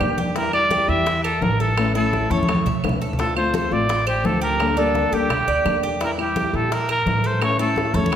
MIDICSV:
0, 0, Header, 1, 7, 480
1, 0, Start_track
1, 0, Tempo, 352734
1, 494, Time_signature, 4, 2, 24, 8
1, 11103, End_track
2, 0, Start_track
2, 0, Title_t, "Trumpet"
2, 0, Program_c, 0, 56
2, 0, Note_on_c, 0, 67, 99
2, 259, Note_off_c, 0, 67, 0
2, 498, Note_on_c, 0, 70, 96
2, 720, Note_off_c, 0, 70, 0
2, 730, Note_on_c, 0, 74, 107
2, 1209, Note_on_c, 0, 76, 120
2, 1229, Note_off_c, 0, 74, 0
2, 1675, Note_off_c, 0, 76, 0
2, 1683, Note_on_c, 0, 69, 94
2, 1936, Note_on_c, 0, 70, 98
2, 1956, Note_off_c, 0, 69, 0
2, 2180, Note_on_c, 0, 69, 100
2, 2201, Note_off_c, 0, 70, 0
2, 2651, Note_off_c, 0, 69, 0
2, 2659, Note_on_c, 0, 69, 94
2, 3142, Note_on_c, 0, 73, 97
2, 3162, Note_off_c, 0, 69, 0
2, 3730, Note_off_c, 0, 73, 0
2, 4345, Note_on_c, 0, 69, 97
2, 4565, Note_off_c, 0, 69, 0
2, 4586, Note_on_c, 0, 72, 99
2, 4805, Note_off_c, 0, 72, 0
2, 4844, Note_on_c, 0, 72, 98
2, 5074, Note_on_c, 0, 74, 113
2, 5095, Note_off_c, 0, 72, 0
2, 5546, Note_off_c, 0, 74, 0
2, 5558, Note_on_c, 0, 67, 94
2, 5795, Note_on_c, 0, 69, 97
2, 5815, Note_off_c, 0, 67, 0
2, 6016, Note_off_c, 0, 69, 0
2, 6024, Note_on_c, 0, 70, 103
2, 6513, Note_on_c, 0, 69, 92
2, 6534, Note_off_c, 0, 70, 0
2, 6997, Note_on_c, 0, 67, 103
2, 7017, Note_off_c, 0, 69, 0
2, 7946, Note_off_c, 0, 67, 0
2, 8210, Note_on_c, 0, 70, 97
2, 8310, Note_off_c, 0, 70, 0
2, 8440, Note_on_c, 0, 67, 88
2, 8923, Note_on_c, 0, 69, 91
2, 8943, Note_off_c, 0, 67, 0
2, 9155, Note_on_c, 0, 70, 90
2, 9175, Note_off_c, 0, 69, 0
2, 9384, Note_off_c, 0, 70, 0
2, 9398, Note_on_c, 0, 70, 94
2, 9886, Note_on_c, 0, 72, 91
2, 9906, Note_off_c, 0, 70, 0
2, 10106, Note_off_c, 0, 72, 0
2, 10114, Note_on_c, 0, 73, 99
2, 10327, Note_off_c, 0, 73, 0
2, 10343, Note_on_c, 0, 69, 91
2, 10818, Note_on_c, 0, 73, 95
2, 10839, Note_off_c, 0, 69, 0
2, 11103, Note_off_c, 0, 73, 0
2, 11103, End_track
3, 0, Start_track
3, 0, Title_t, "Cuban tres"
3, 0, Program_c, 1, 25
3, 0, Note_on_c, 1, 74, 76
3, 238, Note_off_c, 1, 74, 0
3, 242, Note_on_c, 1, 67, 74
3, 481, Note_off_c, 1, 67, 0
3, 487, Note_on_c, 1, 64, 82
3, 957, Note_off_c, 1, 64, 0
3, 967, Note_on_c, 1, 67, 72
3, 1437, Note_off_c, 1, 67, 0
3, 1447, Note_on_c, 1, 64, 77
3, 1684, Note_off_c, 1, 64, 0
3, 1694, Note_on_c, 1, 70, 70
3, 2161, Note_off_c, 1, 70, 0
3, 2178, Note_on_c, 1, 69, 73
3, 2643, Note_off_c, 1, 69, 0
3, 2655, Note_on_c, 1, 64, 83
3, 3122, Note_off_c, 1, 64, 0
3, 3140, Note_on_c, 1, 69, 78
3, 3604, Note_off_c, 1, 69, 0
3, 3624, Note_on_c, 1, 76, 73
3, 4086, Note_off_c, 1, 76, 0
3, 4103, Note_on_c, 1, 69, 76
3, 4333, Note_off_c, 1, 69, 0
3, 4338, Note_on_c, 1, 65, 80
3, 4804, Note_off_c, 1, 65, 0
3, 4823, Note_on_c, 1, 69, 71
3, 5286, Note_off_c, 1, 69, 0
3, 5296, Note_on_c, 1, 65, 81
3, 5530, Note_off_c, 1, 65, 0
3, 5534, Note_on_c, 1, 72, 77
3, 6001, Note_off_c, 1, 72, 0
3, 6006, Note_on_c, 1, 67, 82
3, 6477, Note_off_c, 1, 67, 0
3, 6488, Note_on_c, 1, 62, 82
3, 6958, Note_off_c, 1, 62, 0
3, 6975, Note_on_c, 1, 67, 76
3, 7441, Note_off_c, 1, 67, 0
3, 7453, Note_on_c, 1, 74, 78
3, 7920, Note_off_c, 1, 74, 0
3, 7937, Note_on_c, 1, 67, 80
3, 8169, Note_off_c, 1, 67, 0
3, 8172, Note_on_c, 1, 64, 81
3, 8639, Note_off_c, 1, 64, 0
3, 8654, Note_on_c, 1, 67, 66
3, 9120, Note_off_c, 1, 67, 0
3, 9142, Note_on_c, 1, 64, 80
3, 9371, Note_off_c, 1, 64, 0
3, 9373, Note_on_c, 1, 70, 73
3, 9839, Note_off_c, 1, 70, 0
3, 9851, Note_on_c, 1, 69, 74
3, 10317, Note_off_c, 1, 69, 0
3, 10332, Note_on_c, 1, 64, 82
3, 10797, Note_off_c, 1, 64, 0
3, 10808, Note_on_c, 1, 69, 74
3, 11103, Note_off_c, 1, 69, 0
3, 11103, End_track
4, 0, Start_track
4, 0, Title_t, "Nylon-string guitar"
4, 0, Program_c, 2, 24
4, 10, Note_on_c, 2, 55, 50
4, 19, Note_on_c, 2, 58, 54
4, 28, Note_on_c, 2, 62, 57
4, 34, Note_on_c, 2, 67, 57
4, 479, Note_off_c, 2, 55, 0
4, 484, Note_on_c, 2, 52, 70
4, 487, Note_off_c, 2, 58, 0
4, 492, Note_off_c, 2, 62, 0
4, 495, Note_off_c, 2, 67, 0
4, 496, Note_on_c, 2, 55, 78
4, 512, Note_on_c, 2, 64, 76
4, 704, Note_off_c, 2, 64, 0
4, 720, Note_off_c, 2, 52, 0
4, 720, Note_on_c, 2, 64, 66
4, 726, Note_off_c, 2, 55, 0
4, 744, Note_on_c, 2, 55, 59
4, 1185, Note_off_c, 2, 64, 0
4, 1201, Note_on_c, 2, 64, 76
4, 1210, Note_off_c, 2, 55, 0
4, 1229, Note_on_c, 2, 55, 59
4, 1439, Note_off_c, 2, 64, 0
4, 1447, Note_off_c, 2, 55, 0
4, 1931, Note_on_c, 2, 52, 52
4, 1947, Note_on_c, 2, 55, 59
4, 1956, Note_on_c, 2, 64, 59
4, 2395, Note_off_c, 2, 52, 0
4, 2412, Note_off_c, 2, 55, 0
4, 2412, Note_on_c, 2, 52, 70
4, 2417, Note_off_c, 2, 64, 0
4, 2419, Note_on_c, 2, 57, 73
4, 2429, Note_on_c, 2, 61, 76
4, 2435, Note_on_c, 2, 64, 73
4, 2639, Note_off_c, 2, 64, 0
4, 2645, Note_off_c, 2, 52, 0
4, 2648, Note_off_c, 2, 57, 0
4, 2653, Note_off_c, 2, 61, 0
4, 2656, Note_on_c, 2, 64, 68
4, 2671, Note_on_c, 2, 61, 70
4, 2682, Note_on_c, 2, 57, 51
4, 3115, Note_off_c, 2, 64, 0
4, 3131, Note_on_c, 2, 64, 72
4, 3134, Note_off_c, 2, 61, 0
4, 3140, Note_off_c, 2, 57, 0
4, 3149, Note_on_c, 2, 61, 63
4, 3158, Note_on_c, 2, 57, 52
4, 3365, Note_off_c, 2, 64, 0
4, 3370, Note_off_c, 2, 57, 0
4, 3373, Note_off_c, 2, 61, 0
4, 3855, Note_on_c, 2, 52, 57
4, 3864, Note_on_c, 2, 57, 49
4, 3872, Note_on_c, 2, 61, 52
4, 3880, Note_on_c, 2, 64, 58
4, 4325, Note_off_c, 2, 52, 0
4, 4326, Note_off_c, 2, 57, 0
4, 4331, Note_on_c, 2, 50, 64
4, 4335, Note_off_c, 2, 61, 0
4, 4339, Note_off_c, 2, 64, 0
4, 4342, Note_on_c, 2, 57, 75
4, 4352, Note_on_c, 2, 60, 74
4, 4354, Note_on_c, 2, 65, 73
4, 4560, Note_off_c, 2, 65, 0
4, 4565, Note_off_c, 2, 50, 0
4, 4571, Note_off_c, 2, 57, 0
4, 4575, Note_off_c, 2, 60, 0
4, 4576, Note_on_c, 2, 65, 73
4, 4592, Note_on_c, 2, 60, 64
4, 4601, Note_on_c, 2, 57, 60
4, 5037, Note_off_c, 2, 65, 0
4, 5054, Note_on_c, 2, 65, 68
4, 5055, Note_off_c, 2, 60, 0
4, 5060, Note_off_c, 2, 57, 0
4, 5070, Note_on_c, 2, 60, 61
4, 5081, Note_on_c, 2, 57, 53
4, 5286, Note_off_c, 2, 65, 0
4, 5288, Note_off_c, 2, 60, 0
4, 5291, Note_off_c, 2, 57, 0
4, 5770, Note_on_c, 2, 50, 56
4, 5780, Note_on_c, 2, 57, 54
4, 5788, Note_on_c, 2, 60, 59
4, 5794, Note_on_c, 2, 65, 53
4, 6237, Note_off_c, 2, 50, 0
4, 6249, Note_off_c, 2, 57, 0
4, 6253, Note_off_c, 2, 60, 0
4, 6253, Note_on_c, 2, 50, 70
4, 6256, Note_off_c, 2, 65, 0
4, 6264, Note_on_c, 2, 55, 66
4, 6268, Note_on_c, 2, 58, 82
4, 6271, Note_on_c, 2, 62, 81
4, 6279, Note_on_c, 2, 69, 83
4, 6481, Note_off_c, 2, 69, 0
4, 6486, Note_off_c, 2, 50, 0
4, 6490, Note_off_c, 2, 62, 0
4, 6491, Note_off_c, 2, 55, 0
4, 6493, Note_off_c, 2, 58, 0
4, 6497, Note_on_c, 2, 69, 66
4, 6506, Note_on_c, 2, 62, 62
4, 6513, Note_on_c, 2, 58, 63
4, 6521, Note_on_c, 2, 55, 60
4, 6960, Note_off_c, 2, 69, 0
4, 6972, Note_off_c, 2, 62, 0
4, 6976, Note_off_c, 2, 58, 0
4, 6977, Note_on_c, 2, 69, 68
4, 6979, Note_off_c, 2, 55, 0
4, 6990, Note_on_c, 2, 62, 68
4, 6993, Note_on_c, 2, 58, 64
4, 7006, Note_on_c, 2, 55, 59
4, 7207, Note_off_c, 2, 69, 0
4, 7209, Note_off_c, 2, 55, 0
4, 7214, Note_off_c, 2, 62, 0
4, 7215, Note_off_c, 2, 58, 0
4, 7693, Note_on_c, 2, 55, 51
4, 7705, Note_on_c, 2, 58, 55
4, 7711, Note_on_c, 2, 62, 58
4, 7716, Note_on_c, 2, 69, 55
4, 8165, Note_off_c, 2, 55, 0
4, 8171, Note_off_c, 2, 58, 0
4, 8174, Note_off_c, 2, 62, 0
4, 8176, Note_off_c, 2, 69, 0
4, 8176, Note_on_c, 2, 52, 69
4, 8188, Note_on_c, 2, 55, 74
4, 8201, Note_on_c, 2, 64, 83
4, 8397, Note_off_c, 2, 64, 0
4, 8406, Note_off_c, 2, 52, 0
4, 8412, Note_off_c, 2, 55, 0
4, 8413, Note_on_c, 2, 64, 74
4, 8439, Note_on_c, 2, 55, 58
4, 8869, Note_off_c, 2, 64, 0
4, 8885, Note_on_c, 2, 64, 69
4, 8893, Note_off_c, 2, 55, 0
4, 8909, Note_on_c, 2, 55, 62
4, 9119, Note_off_c, 2, 55, 0
4, 9120, Note_off_c, 2, 64, 0
4, 9604, Note_on_c, 2, 52, 55
4, 9618, Note_on_c, 2, 55, 57
4, 9630, Note_on_c, 2, 64, 57
4, 10068, Note_off_c, 2, 52, 0
4, 10084, Note_off_c, 2, 55, 0
4, 10084, Note_on_c, 2, 52, 76
4, 10087, Note_off_c, 2, 64, 0
4, 10090, Note_on_c, 2, 57, 74
4, 10099, Note_on_c, 2, 61, 71
4, 10103, Note_on_c, 2, 64, 78
4, 10311, Note_off_c, 2, 64, 0
4, 10319, Note_off_c, 2, 52, 0
4, 10322, Note_off_c, 2, 57, 0
4, 10323, Note_off_c, 2, 61, 0
4, 10327, Note_on_c, 2, 64, 76
4, 10339, Note_on_c, 2, 61, 67
4, 10349, Note_on_c, 2, 57, 55
4, 10789, Note_off_c, 2, 64, 0
4, 10806, Note_off_c, 2, 61, 0
4, 10806, Note_on_c, 2, 64, 69
4, 10811, Note_off_c, 2, 57, 0
4, 10821, Note_on_c, 2, 61, 59
4, 10833, Note_on_c, 2, 57, 55
4, 11035, Note_off_c, 2, 57, 0
4, 11037, Note_off_c, 2, 61, 0
4, 11039, Note_off_c, 2, 64, 0
4, 11103, End_track
5, 0, Start_track
5, 0, Title_t, "Upright bass"
5, 0, Program_c, 3, 32
5, 0, Note_on_c, 3, 40, 81
5, 1129, Note_off_c, 3, 40, 0
5, 1202, Note_on_c, 3, 40, 96
5, 1878, Note_off_c, 3, 40, 0
5, 1922, Note_on_c, 3, 33, 90
5, 3051, Note_off_c, 3, 33, 0
5, 3131, Note_on_c, 3, 40, 98
5, 3581, Note_off_c, 3, 40, 0
5, 3616, Note_on_c, 3, 40, 68
5, 3840, Note_off_c, 3, 40, 0
5, 3858, Note_on_c, 3, 38, 82
5, 4979, Note_off_c, 3, 38, 0
5, 5053, Note_on_c, 3, 33, 89
5, 5725, Note_off_c, 3, 33, 0
5, 5768, Note_on_c, 3, 38, 86
5, 6894, Note_off_c, 3, 38, 0
5, 6966, Note_on_c, 3, 38, 93
5, 7417, Note_off_c, 3, 38, 0
5, 7448, Note_on_c, 3, 38, 68
5, 7675, Note_off_c, 3, 38, 0
5, 7693, Note_on_c, 3, 40, 88
5, 8815, Note_off_c, 3, 40, 0
5, 8893, Note_on_c, 3, 46, 97
5, 9563, Note_off_c, 3, 46, 0
5, 9606, Note_on_c, 3, 45, 87
5, 10730, Note_off_c, 3, 45, 0
5, 10804, Note_on_c, 3, 40, 99
5, 11103, Note_off_c, 3, 40, 0
5, 11103, End_track
6, 0, Start_track
6, 0, Title_t, "Muted nylon-string guitar strokes"
6, 1454, Note_on_c, 9, 29, 59
6, 1590, Note_off_c, 9, 29, 0
6, 3381, Note_on_c, 9, 29, 54
6, 3517, Note_off_c, 9, 29, 0
6, 5299, Note_on_c, 9, 29, 59
6, 5435, Note_off_c, 9, 29, 0
6, 7223, Note_on_c, 9, 29, 59
6, 7359, Note_off_c, 9, 29, 0
6, 9133, Note_on_c, 9, 29, 55
6, 9269, Note_off_c, 9, 29, 0
6, 11042, Note_on_c, 9, 29, 56
6, 11103, Note_off_c, 9, 29, 0
6, 11103, End_track
7, 0, Start_track
7, 0, Title_t, "Drums"
7, 7, Note_on_c, 9, 63, 36
7, 8, Note_on_c, 9, 60, 35
7, 8, Note_on_c, 9, 61, 83
7, 8, Note_on_c, 9, 75, 68
7, 143, Note_off_c, 9, 63, 0
7, 144, Note_off_c, 9, 60, 0
7, 144, Note_off_c, 9, 61, 0
7, 145, Note_off_c, 9, 75, 0
7, 242, Note_on_c, 9, 63, 79
7, 251, Note_on_c, 9, 60, 33
7, 378, Note_off_c, 9, 63, 0
7, 387, Note_off_c, 9, 60, 0
7, 486, Note_on_c, 9, 60, 67
7, 487, Note_on_c, 9, 63, 32
7, 622, Note_off_c, 9, 60, 0
7, 623, Note_off_c, 9, 63, 0
7, 720, Note_on_c, 9, 63, 32
7, 726, Note_on_c, 9, 75, 66
7, 856, Note_off_c, 9, 63, 0
7, 862, Note_off_c, 9, 75, 0
7, 960, Note_on_c, 9, 63, 93
7, 968, Note_on_c, 9, 60, 59
7, 1097, Note_off_c, 9, 63, 0
7, 1104, Note_off_c, 9, 60, 0
7, 1212, Note_on_c, 9, 63, 32
7, 1213, Note_on_c, 9, 60, 35
7, 1348, Note_off_c, 9, 63, 0
7, 1349, Note_off_c, 9, 60, 0
7, 1444, Note_on_c, 9, 63, 34
7, 1454, Note_on_c, 9, 60, 72
7, 1580, Note_off_c, 9, 63, 0
7, 1591, Note_off_c, 9, 60, 0
7, 1686, Note_on_c, 9, 63, 36
7, 1691, Note_on_c, 9, 75, 64
7, 1697, Note_on_c, 9, 60, 35
7, 1823, Note_off_c, 9, 63, 0
7, 1827, Note_off_c, 9, 75, 0
7, 1833, Note_off_c, 9, 60, 0
7, 1929, Note_on_c, 9, 63, 88
7, 1936, Note_on_c, 9, 60, 33
7, 1936, Note_on_c, 9, 61, 80
7, 2066, Note_off_c, 9, 63, 0
7, 2072, Note_off_c, 9, 60, 0
7, 2072, Note_off_c, 9, 61, 0
7, 2174, Note_on_c, 9, 63, 36
7, 2179, Note_on_c, 9, 60, 34
7, 2310, Note_off_c, 9, 63, 0
7, 2315, Note_off_c, 9, 60, 0
7, 2415, Note_on_c, 9, 60, 71
7, 2416, Note_on_c, 9, 75, 70
7, 2417, Note_on_c, 9, 63, 32
7, 2551, Note_off_c, 9, 60, 0
7, 2552, Note_off_c, 9, 75, 0
7, 2553, Note_off_c, 9, 63, 0
7, 2659, Note_on_c, 9, 63, 32
7, 2795, Note_off_c, 9, 63, 0
7, 2897, Note_on_c, 9, 63, 58
7, 2902, Note_on_c, 9, 60, 60
7, 3033, Note_off_c, 9, 63, 0
7, 3038, Note_off_c, 9, 60, 0
7, 3140, Note_on_c, 9, 63, 84
7, 3147, Note_on_c, 9, 60, 36
7, 3276, Note_off_c, 9, 63, 0
7, 3283, Note_off_c, 9, 60, 0
7, 3303, Note_on_c, 9, 63, 89
7, 3382, Note_on_c, 9, 75, 67
7, 3387, Note_on_c, 9, 60, 72
7, 3439, Note_off_c, 9, 63, 0
7, 3467, Note_on_c, 9, 63, 69
7, 3518, Note_off_c, 9, 75, 0
7, 3523, Note_off_c, 9, 60, 0
7, 3603, Note_off_c, 9, 63, 0
7, 3618, Note_on_c, 9, 64, 97
7, 3634, Note_on_c, 9, 60, 34
7, 3754, Note_off_c, 9, 64, 0
7, 3770, Note_off_c, 9, 60, 0
7, 3862, Note_on_c, 9, 75, 63
7, 3871, Note_on_c, 9, 60, 32
7, 3871, Note_on_c, 9, 61, 80
7, 3936, Note_on_c, 9, 64, 85
7, 3998, Note_off_c, 9, 75, 0
7, 4007, Note_off_c, 9, 60, 0
7, 4007, Note_off_c, 9, 61, 0
7, 4072, Note_off_c, 9, 64, 0
7, 4108, Note_on_c, 9, 60, 30
7, 4244, Note_off_c, 9, 60, 0
7, 4263, Note_on_c, 9, 64, 84
7, 4340, Note_on_c, 9, 63, 32
7, 4350, Note_on_c, 9, 60, 67
7, 4399, Note_off_c, 9, 64, 0
7, 4476, Note_off_c, 9, 63, 0
7, 4486, Note_off_c, 9, 60, 0
7, 4580, Note_on_c, 9, 75, 68
7, 4583, Note_on_c, 9, 63, 33
7, 4716, Note_off_c, 9, 75, 0
7, 4719, Note_off_c, 9, 63, 0
7, 4814, Note_on_c, 9, 63, 92
7, 4828, Note_on_c, 9, 60, 59
7, 4950, Note_off_c, 9, 63, 0
7, 4964, Note_off_c, 9, 60, 0
7, 5058, Note_on_c, 9, 63, 32
7, 5067, Note_on_c, 9, 60, 35
7, 5194, Note_off_c, 9, 63, 0
7, 5203, Note_off_c, 9, 60, 0
7, 5299, Note_on_c, 9, 63, 37
7, 5306, Note_on_c, 9, 60, 75
7, 5435, Note_off_c, 9, 63, 0
7, 5442, Note_off_c, 9, 60, 0
7, 5536, Note_on_c, 9, 63, 36
7, 5540, Note_on_c, 9, 75, 67
7, 5546, Note_on_c, 9, 60, 35
7, 5672, Note_off_c, 9, 63, 0
7, 5676, Note_off_c, 9, 75, 0
7, 5682, Note_off_c, 9, 60, 0
7, 5778, Note_on_c, 9, 63, 84
7, 5782, Note_on_c, 9, 60, 31
7, 5782, Note_on_c, 9, 61, 84
7, 5914, Note_off_c, 9, 63, 0
7, 5918, Note_off_c, 9, 60, 0
7, 5918, Note_off_c, 9, 61, 0
7, 6013, Note_on_c, 9, 63, 36
7, 6019, Note_on_c, 9, 60, 33
7, 6149, Note_off_c, 9, 63, 0
7, 6156, Note_off_c, 9, 60, 0
7, 6252, Note_on_c, 9, 63, 32
7, 6257, Note_on_c, 9, 75, 67
7, 6264, Note_on_c, 9, 60, 65
7, 6388, Note_off_c, 9, 63, 0
7, 6394, Note_off_c, 9, 75, 0
7, 6400, Note_off_c, 9, 60, 0
7, 6495, Note_on_c, 9, 63, 34
7, 6631, Note_off_c, 9, 63, 0
7, 6732, Note_on_c, 9, 63, 58
7, 6740, Note_on_c, 9, 60, 60
7, 6868, Note_off_c, 9, 63, 0
7, 6876, Note_off_c, 9, 60, 0
7, 6975, Note_on_c, 9, 63, 33
7, 6983, Note_on_c, 9, 60, 35
7, 7111, Note_off_c, 9, 63, 0
7, 7120, Note_off_c, 9, 60, 0
7, 7215, Note_on_c, 9, 75, 69
7, 7216, Note_on_c, 9, 60, 76
7, 7216, Note_on_c, 9, 63, 36
7, 7216, Note_on_c, 9, 64, 83
7, 7352, Note_off_c, 9, 60, 0
7, 7352, Note_off_c, 9, 75, 0
7, 7353, Note_off_c, 9, 63, 0
7, 7353, Note_off_c, 9, 64, 0
7, 7451, Note_on_c, 9, 63, 33
7, 7462, Note_on_c, 9, 60, 34
7, 7587, Note_off_c, 9, 63, 0
7, 7598, Note_off_c, 9, 60, 0
7, 7696, Note_on_c, 9, 63, 33
7, 7697, Note_on_c, 9, 60, 35
7, 7697, Note_on_c, 9, 61, 80
7, 7698, Note_on_c, 9, 75, 64
7, 7832, Note_off_c, 9, 63, 0
7, 7833, Note_off_c, 9, 60, 0
7, 7833, Note_off_c, 9, 61, 0
7, 7835, Note_off_c, 9, 75, 0
7, 7939, Note_on_c, 9, 60, 31
7, 8075, Note_off_c, 9, 60, 0
7, 8178, Note_on_c, 9, 60, 71
7, 8179, Note_on_c, 9, 63, 32
7, 8314, Note_off_c, 9, 60, 0
7, 8315, Note_off_c, 9, 63, 0
7, 8414, Note_on_c, 9, 63, 34
7, 8422, Note_on_c, 9, 75, 70
7, 8550, Note_off_c, 9, 63, 0
7, 8558, Note_off_c, 9, 75, 0
7, 8655, Note_on_c, 9, 63, 93
7, 8663, Note_on_c, 9, 60, 58
7, 8791, Note_off_c, 9, 63, 0
7, 8799, Note_off_c, 9, 60, 0
7, 8898, Note_on_c, 9, 63, 34
7, 8900, Note_on_c, 9, 60, 33
7, 9034, Note_off_c, 9, 63, 0
7, 9036, Note_off_c, 9, 60, 0
7, 9140, Note_on_c, 9, 63, 35
7, 9144, Note_on_c, 9, 60, 69
7, 9276, Note_off_c, 9, 63, 0
7, 9280, Note_off_c, 9, 60, 0
7, 9374, Note_on_c, 9, 63, 38
7, 9377, Note_on_c, 9, 75, 68
7, 9384, Note_on_c, 9, 60, 37
7, 9510, Note_off_c, 9, 63, 0
7, 9513, Note_off_c, 9, 75, 0
7, 9521, Note_off_c, 9, 60, 0
7, 9613, Note_on_c, 9, 63, 82
7, 9618, Note_on_c, 9, 60, 35
7, 9618, Note_on_c, 9, 61, 76
7, 9750, Note_off_c, 9, 63, 0
7, 9754, Note_off_c, 9, 60, 0
7, 9754, Note_off_c, 9, 61, 0
7, 9856, Note_on_c, 9, 63, 34
7, 9857, Note_on_c, 9, 60, 31
7, 9992, Note_off_c, 9, 63, 0
7, 9993, Note_off_c, 9, 60, 0
7, 10091, Note_on_c, 9, 75, 72
7, 10097, Note_on_c, 9, 63, 31
7, 10100, Note_on_c, 9, 60, 68
7, 10227, Note_off_c, 9, 75, 0
7, 10233, Note_off_c, 9, 63, 0
7, 10236, Note_off_c, 9, 60, 0
7, 10332, Note_on_c, 9, 63, 32
7, 10468, Note_off_c, 9, 63, 0
7, 10562, Note_on_c, 9, 63, 59
7, 10583, Note_on_c, 9, 60, 59
7, 10698, Note_off_c, 9, 63, 0
7, 10719, Note_off_c, 9, 60, 0
7, 10803, Note_on_c, 9, 63, 97
7, 10819, Note_on_c, 9, 60, 35
7, 10939, Note_off_c, 9, 63, 0
7, 10955, Note_off_c, 9, 60, 0
7, 10968, Note_on_c, 9, 63, 99
7, 11051, Note_on_c, 9, 75, 68
7, 11058, Note_on_c, 9, 60, 75
7, 11103, Note_off_c, 9, 60, 0
7, 11103, Note_off_c, 9, 63, 0
7, 11103, Note_off_c, 9, 75, 0
7, 11103, End_track
0, 0, End_of_file